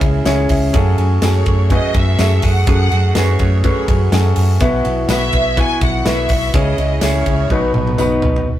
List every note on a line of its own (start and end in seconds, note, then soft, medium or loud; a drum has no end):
0.00 0.21 C#2 loud
0.00 0.76 C#3 medium
0.00 0.25 C#4 medium
0.00 0.26 E4 medium
0.00 0.26 G#4 medium
0.00 0.76 B4 medium
0.00 0.26 C#5 medium
0.00 0.23 E5 medium
0.00 kick loud
0.00 ride medium
0.25 0.46 C#2 loud
0.25 0.50 E3 medium
0.25 0.69 C#4 medium
0.25 0.50 C#4 medium
0.25 0.70 E4 medium
0.25 0.50 E4 medium
0.25 0.70 G#4 medium
0.25 0.48 G#4 medium
0.25 0.70 C#5 medium
0.25 snare loud
0.25 ride medium
0.25 tambourine medium
0.49 0.70 C#2 medium
0.49 0.74 C#4 medium
0.49 0.75 E4 medium
0.49 0.74 G#4 medium
0.49 kick medium
0.49 open hi-hat medium
0.49 ride medium
0.73 0.98 F#2 medium
0.73 0.94 F#2 loud
0.73 0.98 C#3 medium
0.73 0.98 F#3 medium
0.73 0.98 A3 loud
0.73 1.17 C#4 medium
0.73 1.18 F#4 medium
0.73 0.98 F#4 medium
0.73 1.18 G#4 medium
0.73 0.97 G#4 loud
0.73 1.18 A4 medium
0.73 kick loud
0.73 hi-hat pedal medium
0.73 ride medium
0.98 1.18 F#2 medium
0.98 1.21 F#3 soft
0.98 1.22 A3 medium
0.98 1.23 F#4 medium
0.98 1.22 G#4 medium
0.98 ride soft
1.22 1.42 F#2 medium
1.22 1.47 F#3 medium
1.22 1.47 A3 medium
1.22 1.66 C#4 medium
1.22 1.66 F#4 medium
1.22 1.46 F#4 medium
1.22 1.66 G#4 medium
1.22 1.45 G#4 medium
1.22 1.66 A4 medium
1.22 1.68 C#5 medium
1.22 snare loud
1.22 ride medium
1.22 tambourine medium
1.46 1.78 F#2 medium
1.46 1.70 F#3 soft
1.46 1.71 A3 medium
1.46 1.71 F#4 soft
1.46 1.71 G#4 soft
1.46 kick medium
1.46 ride soft
1.70 1.95 F#2 medium
1.70 1.95 C#3 medium
1.70 1.95 F#3 loud
1.70 1.95 A3 medium
1.70 2.14 C#4 medium
1.70 2.15 F#4 medium
1.70 1.94 F#4 medium
1.70 2.15 G#4 medium
1.70 1.93 G#4 loud
1.70 2.15 B4 medium
1.70 1.96 D#5 loud
1.70 kick medium
1.70 ride medium
1.94 2.15 F#2 medium
1.94 2.17 F#3 soft
1.94 2.18 A3 soft
1.94 2.19 F#4 medium
1.94 2.19 G#4 medium
1.94 2.44 E5 medium
1.94 kick loud
1.94 ride medium
2.18 2.39 F#2 loud
2.18 2.43 F#3 medium
2.18 2.44 A3 medium
2.18 2.63 C#4 medium
2.18 2.63 F#4 medium
2.18 2.43 F#4 medium
2.18 2.63 G#4 medium
2.18 2.42 G#4 medium
2.18 2.63 A4 medium
2.18 snare loud
2.18 ride medium
2.18 tambourine medium
2.42 2.63 F#2 loud
2.42 2.67 F#3 medium
2.42 2.67 A3 medium
2.42 2.68 F#4 medium
2.42 2.67 G#4 medium
2.42 2.66 F#5 medium
2.42 kick medium
2.42 open hi-hat medium
2.42 ride medium
2.66 2.92 F#2 medium
2.66 2.87 F#2 loud
2.66 2.92 C#3 medium
2.66 2.92 F#3 medium
2.66 2.92 A3 medium
2.66 3.11 C#4 medium
2.66 3.11 F#4 medium
2.66 2.91 F#4 medium
2.66 3.11 G#4 medium
2.66 2.90 G#4 medium
2.66 3.11 A4 medium
2.66 3.12 F#5 loud
2.66 kick loud
2.66 hi-hat pedal medium
2.66 ride medium
2.91 3.11 F#2 medium
2.91 3.15 F#3 medium
2.91 3.16 A3 medium
2.91 3.16 F#4 medium
2.91 3.16 G#4 medium
2.91 ride soft
3.15 3.36 F#2 loud
3.15 3.40 F#3 medium
3.15 3.40 A3 medium
3.15 3.59 C#4 medium
3.15 3.59 F#4 medium
3.15 3.40 F#4 medium
3.15 3.60 G#4 medium
3.15 3.39 G#4 medium
3.15 3.60 B4 medium
3.15 3.63 C#5 medium
3.15 snare loud
3.15 ride medium
3.15 tambourine medium
3.39 3.71 F#2 loud
3.39 3.63 F#3 soft
3.39 3.64 A3 medium
3.39 3.64 F#4 medium
3.39 3.64 G#4 medium
3.39 kick medium
3.39 ride medium
3.64 3.88 F#2 medium
3.64 3.88 C#3 medium
3.64 3.89 F#3 medium
3.64 3.88 A3 loud
3.64 4.08 C#4 medium
3.64 4.08 F#4 medium
3.64 3.88 F#4 medium
3.64 4.08 G#4 medium
3.64 3.87 G#4 loud
3.64 4.08 B4 medium
3.64 4.09 C#5 medium
3.64 kick medium
3.64 ride medium
3.88 4.08 F#2 medium
3.88 4.10 F#3 medium
3.88 4.11 A3 medium
3.88 4.12 F#4 medium
3.88 4.12 G#4 medium
3.88 kick loud
3.88 ride medium
4.12 4.32 F#2 loud
4.12 4.36 F#3 medium
4.12 4.36 A3 medium
4.12 4.56 C#4 medium
4.12 4.56 F#4 medium
4.12 4.36 F#4 medium
4.12 4.57 G#4 medium
4.12 4.35 G#4 medium
4.12 4.57 A4 medium
4.12 snare loud
4.12 ride medium
4.12 tambourine medium
4.36 4.57 F#2 medium
4.36 4.61 F#3 soft
4.36 4.61 A3 medium
4.36 4.61 F#4 medium
4.36 4.61 G#4 medium
4.36 open hi-hat medium
4.36 ride medium
4.60 4.81 B1 loud
4.60 4.85 B2 medium
4.60 5.30 B2 medium
4.60 4.85 E3 medium
4.60 5.05 B3 medium
4.60 4.85 B3 medium
4.60 5.05 E4 medium
4.60 4.84 E4 medium
4.60 5.05 F#4 medium
4.60 4.83 F#4 medium
4.60 5.05 B4 medium
4.60 kick loud
4.60 hi-hat pedal medium
4.60 ride medium
4.84 5.05 B1 medium
4.84 5.08 B3 medium
4.84 5.09 E4 medium
4.84 5.09 F#4 medium
4.84 ride soft
5.08 5.29 B1 loud
5.08 5.33 E3 medium
5.08 5.33 B3 medium
5.08 5.53 B3 medium
5.08 5.53 E4 medium
5.08 5.32 E4 medium
5.08 5.53 F#4 medium
5.08 5.31 F#4 medium
5.08 5.53 B4 medium
5.08 5.55 E5 loud
5.08 snare loud
5.08 ride medium
5.08 tambourine medium
5.32 5.64 B1 medium
5.32 5.57 B3 soft
5.32 5.57 E4 soft
5.32 5.57 F#4 medium
5.32 kick medium
5.32 ride medium
5.57 5.81 B2 medium
5.57 5.82 E3 medium
5.57 6.01 B3 medium
5.57 5.82 B3 loud
5.57 6.01 E4 medium
5.57 5.82 E4 loud
5.57 6.01 F#4 medium
5.57 5.81 F#4 loud
5.57 6.02 B4 medium
5.57 5.82 G#5 loud
5.57 kick medium
5.57 ride medium
5.81 6.01 B1 loud
5.81 6.05 B3 soft
5.81 6.06 E4 medium
5.81 6.06 F#4 medium
5.81 6.04 F#5 medium
5.81 kick loud
5.81 ride medium
6.05 6.26 B1 medium
6.05 6.30 E3 medium
6.05 6.49 B3 medium
6.05 6.30 B3 medium
6.05 6.49 E4 medium
6.05 6.30 E4 medium
6.05 6.50 F#4 medium
6.05 6.28 F#4 medium
6.05 6.50 B4 medium
6.05 6.54 E5 medium
6.05 snare loud
6.05 ride medium
6.05 tambourine medium
6.29 6.50 B1 loud
6.29 6.54 B3 medium
6.29 6.54 E4 medium
6.29 6.54 F#4 medium
6.29 kick medium
6.29 open hi-hat medium
6.29 ride medium
6.53 6.74 C#2 loud
6.53 6.78 C#3 medium
6.53 7.23 C#3 medium
6.53 6.78 E3 medium
6.53 6.98 C#4 medium
6.53 6.79 C#4 medium
6.53 6.98 E4 medium
6.53 6.78 E4 medium
6.53 6.98 G#4 medium
6.53 6.77 G#4 medium
6.53 6.98 C#5 medium
6.53 7.02 D#5 medium
6.53 kick loud
6.53 hi-hat pedal medium
6.53 ride medium
6.78 6.98 C#2 medium
6.78 7.02 C#4 medium
6.78 7.03 E4 medium
6.78 7.02 G#4 medium
6.78 ride medium
7.01 7.22 C#2 loud
7.01 7.26 E3 medium
7.01 7.46 C#4 medium
7.01 7.27 C#4 medium
7.01 7.46 E4 medium
7.01 7.26 E4 medium
7.01 7.46 G#4 medium
7.01 7.25 G#4 medium
7.01 7.99 C#5 medium
7.01 7.46 C#5 medium
7.01 snare loud
7.01 ride medium
7.01 tambourine medium
7.26 7.46 C#2 medium
7.26 7.51 C#4 soft
7.26 7.51 E4 medium
7.26 7.50 G#4 medium
7.26 kick medium
7.26 ride medium
7.50 7.70 B1 loud
7.50 7.75 B2 medium
7.50 8.20 B2 medium
7.50 7.75 F#3 medium
7.50 7.95 B3 medium
7.50 7.75 B3 medium
7.50 7.95 D#4 medium
7.50 7.74 D#4 loud
7.50 7.95 F#4 medium
7.50 7.95 B4 medium
7.50 7.72 B4 loud
7.50 kick medium
7.50 high tom medium
7.74 7.95 B1 medium
7.74 7.98 B3 soft
7.74 7.99 D#4 medium
7.74 7.98 B4 medium
7.74 mid tom medium
7.87 mid tom medium
7.98 8.19 B1 medium
7.98 8.23 F#3 medium
7.98 8.42 B3 medium
7.98 8.23 B3 medium
7.98 8.43 D#4 medium
7.98 8.22 D#4 medium
7.98 8.43 F#4 medium
7.98 8.43 B4 medium
7.98 8.21 B4 medium
7.98 mid tom medium
7.98 tambourine medium
8.22 8.43 B1 medium
8.22 8.48 B3 soft
8.22 8.47 D#4 medium
8.22 8.47 B4 medium
8.22 floor tom medium
8.36 floor tom medium
8.47 8.60 E1 medium
8.47 8.60 B4 medium